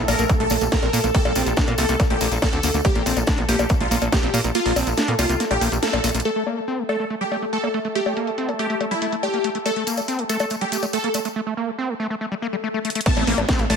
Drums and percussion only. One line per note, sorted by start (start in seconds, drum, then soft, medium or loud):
0.08 open hi-hat loud
0.08 tambourine medium
0.08 high bongo medium
0.19 closed hi-hat soft
0.19 tambourine medium
0.29 kick loud
0.29 closed hi-hat medium
0.29 tambourine soft
0.40 closed hi-hat soft
0.50 open hi-hat loud
0.50 tambourine loud
0.50 high bongo soft
0.61 closed hi-hat soft
0.61 tambourine medium
0.72 kick loud
0.72 snare loud
0.72 closed hi-hat medium
0.83 closed hi-hat soft
0.83 high bongo soft
0.93 open hi-hat loud
0.93 tambourine loud
1.04 closed hi-hat soft
1.04 tambourine soft
1.14 kick loud
1.14 closed hi-hat medium
1.14 tambourine soft
1.25 closed hi-hat soft
1.25 high bongo medium
1.35 open hi-hat loud
1.35 tambourine medium
1.46 closed hi-hat soft
1.46 tambourine soft
1.57 kick loud
1.57 snare loud
1.57 closed hi-hat medium
1.57 tambourine soft
1.68 closed hi-hat soft
1.68 high bongo soft
1.78 open hi-hat loud
1.78 tambourine medium
1.89 closed hi-hat soft
1.89 tambourine medium
2.00 kick loud
2.00 snare soft
2.00 closed hi-hat medium
2.00 tambourine soft
2.00 high bongo soft
2.10 closed hi-hat soft
2.21 open hi-hat loud
2.21 tambourine medium
2.32 closed hi-hat soft
2.32 tambourine soft
2.42 kick loud
2.42 snare loud
2.42 closed hi-hat medium
2.42 tambourine soft
2.42 high bongo medium
2.53 closed hi-hat soft
2.63 open hi-hat loud
2.63 tambourine loud
2.74 closed hi-hat soft
2.74 tambourine soft
2.85 kick loud
2.85 closed hi-hat medium
2.85 tambourine soft
2.85 high bongo soft
2.95 closed hi-hat soft
3.06 open hi-hat loud
3.06 tambourine medium
3.17 closed hi-hat soft
3.17 tambourine medium
3.17 high bongo soft
3.27 kick loud
3.27 snare loud
3.27 closed hi-hat medium
3.27 tambourine soft
3.38 closed hi-hat soft
3.49 open hi-hat loud
3.49 tambourine medium
3.59 closed hi-hat soft
3.59 tambourine medium
3.59 high bongo medium
3.69 kick loud
3.69 closed hi-hat medium
3.69 tambourine soft
3.81 closed hi-hat soft
3.91 open hi-hat loud
3.91 tambourine medium
4.01 closed hi-hat soft
4.01 tambourine medium
4.01 high bongo soft
4.12 kick loud
4.12 snare loud
4.12 closed hi-hat medium
4.12 tambourine soft
4.23 closed hi-hat soft
4.34 open hi-hat loud
4.34 tambourine medium
4.34 high bongo soft
4.44 closed hi-hat soft
4.44 tambourine medium
4.55 closed hi-hat medium
4.55 tambourine soft
4.66 open hi-hat medium
4.76 open hi-hat loud
4.76 tambourine medium
4.76 high bongo medium
4.87 closed hi-hat soft
4.87 tambourine soft
4.97 snare loud
4.97 closed hi-hat medium
4.97 tambourine soft
5.08 closed hi-hat soft
5.19 open hi-hat loud
5.19 tambourine medium
5.19 high bongo soft
5.29 closed hi-hat soft
5.29 tambourine medium
5.40 snare soft
5.40 closed hi-hat medium
5.40 tambourine soft
5.51 closed hi-hat soft
5.51 high bongo soft
5.61 open hi-hat loud
5.61 tambourine medium
5.72 closed hi-hat soft
5.72 tambourine medium
5.82 snare loud
5.82 closed hi-hat medium
5.82 tambourine soft
5.93 closed hi-hat soft
5.93 high bongo medium
6.04 closed hi-hat medium
6.04 open hi-hat loud
6.04 tambourine medium
6.09 closed hi-hat medium
6.15 closed hi-hat medium
6.15 tambourine soft
6.20 closed hi-hat medium
6.25 closed hi-hat medium
6.36 closed hi-hat soft
6.46 closed hi-hat loud
6.46 high bongo soft
6.57 closed hi-hat soft
6.68 closed hi-hat medium
6.78 closed hi-hat soft
6.89 closed hi-hat medium
6.89 high bongo medium
7.00 closed hi-hat soft
7.10 closed hi-hat medium
7.21 closed hi-hat soft
7.32 closed hi-hat medium
7.32 high bongo soft
7.42 closed hi-hat soft
7.53 closed hi-hat medium
7.64 closed hi-hat soft
7.64 high bongo soft
7.74 closed hi-hat medium
7.85 closed hi-hat soft
7.95 closed hi-hat medium
8.06 closed hi-hat soft
8.06 high bongo medium
8.17 closed hi-hat medium
8.27 closed hi-hat soft
8.38 closed hi-hat medium
8.49 closed hi-hat soft
8.49 high bongo soft
8.59 closed hi-hat medium
8.70 closed hi-hat soft
8.81 closed hi-hat medium
8.81 high bongo soft
8.91 closed hi-hat soft
9.02 closed hi-hat medium
9.12 closed hi-hat soft
9.23 closed hi-hat medium
9.23 high bongo medium
9.34 closed hi-hat soft
9.44 closed hi-hat medium
9.55 closed hi-hat soft
9.66 closed hi-hat medium
9.66 tambourine soft
9.66 high bongo soft
9.76 closed hi-hat soft
9.87 closed hi-hat medium
9.87 tambourine medium
9.97 closed hi-hat soft
9.97 tambourine medium
9.97 high bongo soft
10.08 closed hi-hat medium
10.08 tambourine soft
10.19 closed hi-hat soft
10.29 closed hi-hat medium
10.29 tambourine medium
10.39 closed hi-hat soft
10.39 tambourine medium
10.39 high bongo medium
10.50 closed hi-hat medium
10.50 tambourine soft
10.61 closed hi-hat soft
10.72 closed hi-hat medium
10.72 tambourine medium
10.83 closed hi-hat soft
10.83 tambourine medium
10.83 high bongo soft
10.93 closed hi-hat medium
10.93 tambourine soft
11.04 closed hi-hat soft
11.14 closed hi-hat medium
11.14 tambourine medium
11.14 high bongo soft
11.25 closed hi-hat soft
11.25 tambourine medium
12.85 closed hi-hat medium
12.90 closed hi-hat medium
12.95 closed hi-hat medium
13.01 closed hi-hat medium
13.06 kick loud
13.06 closed hi-hat medium
13.06 crash loud
13.17 closed hi-hat soft
13.17 high bongo soft
13.27 open hi-hat loud
13.38 closed hi-hat soft
13.38 high bongo medium
13.49 kick loud
13.49 snare loud
13.49 closed hi-hat medium
13.59 closed hi-hat soft
13.70 open hi-hat loud
13.70 high bongo soft